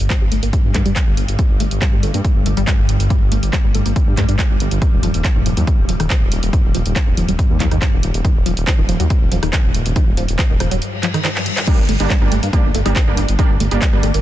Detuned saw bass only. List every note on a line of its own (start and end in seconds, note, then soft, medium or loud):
0.00 0.07 G1 medium
0.21 0.29 G1 medium
0.32 0.40 G1 loud
0.43 0.50 G1 medium
0.64 0.72 G2 medium
0.75 0.82 G2 loud
0.86 0.93 G2 medium
1.07 1.14 G1 medium
1.17 1.25 G1 loud
1.29 1.36 G1 medium
1.50 1.57 G1 medium
1.60 1.68 G1 loud
1.71 1.79 G1 medium
1.93 2.00 G1 medium
2.03 2.11 G1 loud
2.14 2.22 G2 medium
2.36 2.43 G1 medium
2.46 2.54 G1 loud
2.57 2.64 G1 medium
2.79 2.86 G1 medium
2.89 2.97 G1 loud
3.00 3.07 G1 medium
3.21 3.29 G1 medium
3.32 3.39 G1 loud
3.43 3.50 G1 medium
3.64 3.72 G1 medium
3.75 3.82 G1 loud
3.86 3.93 G1 medium
4.07 4.14 G2 medium
4.17 4.25 G2 loud
4.29 4.36 G2 medium
4.50 4.57 G1 medium
4.60 4.68 G1 loud
4.71 4.79 G1 medium
4.93 5.00 D#1 medium
5.03 5.11 D#1 loud
5.14 5.22 D#1 medium
5.36 5.43 D#1 medium
5.46 5.54 D#1 loud
5.57 5.64 D#2 medium
5.78 5.86 D#1 medium
5.89 5.97 D#1 loud
6.00 6.07 D#1 medium
6.21 6.29 D#1 medium
6.32 6.40 D#1 loud
6.43 6.50 D#1 medium
6.64 6.72 D#1 medium
6.75 6.82 D#1 loud
6.86 6.93 D#1 loud
7.07 7.14 D#1 medium
7.17 7.25 D#1 loud
7.29 7.36 D#1 medium
7.50 7.57 D#2 medium
7.60 7.68 D#2 loud
7.71 7.79 D#2 medium
7.93 8.00 D#1 medium
8.03 8.11 D#1 loud
8.14 8.21 D#1 medium
8.36 8.43 D#1 medium
8.46 8.54 D#1 loud
8.57 8.64 D#1 medium
8.78 8.86 D#1 medium
8.89 8.97 D#1 loud
9.00 9.07 D#2 medium
9.21 9.29 D#1 medium
9.32 9.40 D#1 loud
9.43 9.50 D#1 medium
9.64 9.72 D#1 medium
9.75 9.82 D#1 loud
9.86 9.93 D#1 medium
10.07 10.14 D#1 medium
10.17 10.25 D#1 loud
10.29 10.36 D#1 loud
10.50 10.57 D#1 medium
10.60 10.68 D#1 loud
10.71 10.79 D#1 medium
11.79 11.86 G1 medium
11.89 11.97 G1 loud
12.00 12.07 G1 medium
12.21 12.29 G1 medium
12.32 12.40 G1 loud
12.43 12.50 G2 medium
12.64 12.72 G1 medium
12.75 12.82 G1 loud
12.86 12.93 G1 medium
13.07 13.14 G1 medium
13.18 13.25 G1 loud
13.29 13.36 G1 medium
13.50 13.57 G1 medium
13.60 13.68 G1 loud
13.71 13.79 G1 medium
13.93 14.00 G1 medium
14.03 14.11 G1 loud
14.14 14.22 G1 medium